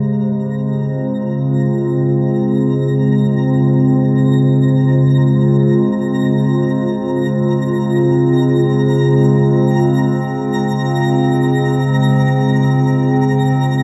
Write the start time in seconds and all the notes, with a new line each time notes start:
Already playing: C#3 G#3 G4 C5 A#5 A#6
0.09 C4
0.51 F4